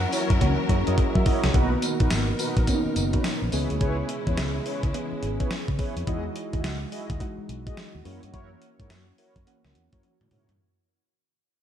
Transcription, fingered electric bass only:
0.30 0.38 F#2 medium
0.41 0.54 C#2 loud
0.69 0.82 F#2 medium
0.88 0.95 F#2 medium
1.15 1.23 F#3 medium
1.44 1.51 C2 medium
1.54 1.75 B1 loud
2.00 2.08 A#1 medium
2.11 2.31 G#1 medium
2.57 2.64 A#1 medium
2.86 muted fingered electric bass stroke soft
2.96 3.16 F#1 loud
3.42 3.50 A#1 medium
3.53 3.66 C#2 loud
3.71 3.78 D2 medium
3.81 4.01 C#2 loud
4.27 4.35 E2 medium
4.38 4.58 C#2 medium
4.83 4.91 C#2 medium
5.12 muted fingered electric bass stroke soft
5.23 5.43 G#1 medium
5.68 5.76 C#3 medium
5.97 6.04 F2 medium
6.07 6.28 E2 loud
6.54 6.61 D#2 medium
6.64 6.84 C#2 medium
7.10 7.17 D#2 medium
7.38 muted fingered electric bass stroke soft
7.49 7.69 B1 medium
7.95 8.02 D#2 medium
8.06 8.18 F#2 loud
8.23 8.31 G2 medium
8.34 8.54 F#2 medium
8.80 8.87 G#2 medium
8.90 9.11 F#2 medium
9.36 9.44 F#2 medium
9.65 9.72 C#2 medium
9.75 9.88 E2 medium
9.93 10.00 F#2 medium
10.21 10.29 A2 medium
10.32 10.44 G#2 medium
10.49 10.57 G2 medium

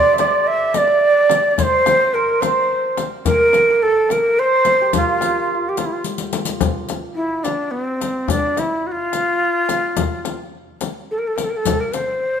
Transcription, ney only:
0.00 0.18 D5 loud
0.19 0.49 D5 medium
0.47 0.76 E5 loud
0.75 1.51 D5 loud
0.75 0.79 D#5 loud
1.51 1.61 D5 medium
1.60 2.15 C5 loud
1.60 1.64 C#5 loud
2.14 2.43 A#4 medium
2.41 3.05 C5 medium
3.26 3.84 A#4 loud
3.83 4.13 A4 medium
4.12 4.41 A#4 medium
4.39 4.94 C5 loud
4.96 5.70 F4 medium
5.69 5.80 G4 medium
5.78 5.87 F4 medium
5.86 5.94 E4 medium
5.93 6.04 F4 medium
7.15 7.45 E4 medium
7.44 7.73 D4 medium
7.71 7.82 B3 medium
7.82 8.32 C4 medium
8.30 8.60 D4 loud
8.59 8.88 E4 medium
8.87 8.93 F#4 medium
8.92 10.38 F4 loud
11.11 11.20 A4 medium
11.18 11.29 A#4 medium
11.27 11.38 A4 medium
11.36 11.46 A#4 medium
11.44 11.51 A4 medium
11.50 11.58 A#4 medium
11.57 11.82 A4 medium
11.80 11.94 A#4 medium
11.93 12.40 C5 medium

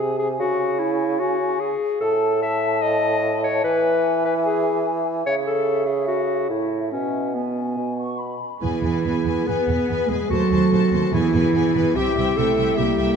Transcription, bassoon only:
0.00 0.36 C3 medium
0.40 1.71 C#3 medium
2.01 3.59 A2 medium
3.63 5.22 E3 medium
5.26 6.51 C#3 medium
6.50 6.92 A2 soft
6.93 7.76 B2 soft
7.77 8.39 B2 soft

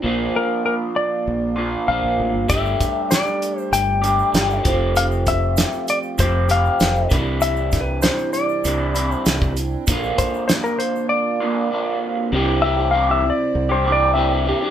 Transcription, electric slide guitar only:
0.36 0.64 A#4 medium
0.66 0.74 A#4 medium
0.96 1.84 D5 medium
1.88 2.49 F5 medium
2.50 3.10 E5 medium
3.11 3.60 D5 medium
3.60 3.75 C5 medium
3.73 4.61 G5 medium
4.97 5.05 F5 loud
5.28 5.89 E5 medium
5.90 5.98 D5 medium
6.20 6.51 C5 medium
6.51 7.08 F5 medium
7.42 7.80 E5 loud
7.81 8.01 B4 medium
8.02 8.33 C5 medium
8.33 9.15 D5 medium
9.15 9.53 C5 medium
10.18 10.46 C5 medium
10.48 10.53 C5 medium
10.64 10.80 A#4 medium
10.79 11.08 C5 medium
11.09 11.98 D5 medium
12.62 12.91 E5 medium
12.91 13.11 F5 loud
13.11 13.34 E5 medium
13.30 13.70 D5 medium
13.72 13.92 C5 medium
13.92 14.13 D5 medium
14.14 14.58 E5 medium

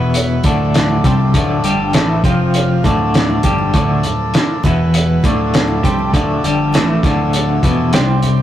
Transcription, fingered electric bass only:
0.00 0.40 E1 medium
0.44 1.00 D1 medium
1.04 1.32 C2 medium
1.34 1.62 D1 medium
1.64 1.92 G1 medium
1.94 2.22 A1 medium
2.23 2.80 F1 medium
2.84 3.40 D1 medium
3.44 3.72 G1 medium
3.73 4.02 D1 medium
4.06 4.33 D1 medium
4.64 5.20 E1 medium
5.24 5.80 D1 medium
5.84 6.12 C2 medium
6.14 6.42 D1 medium
6.44 6.72 G1 medium
6.75 7.03 A1 medium
7.04 7.60 D1 medium
7.63 7.92 E1 medium
7.94 8.42 C2 medium

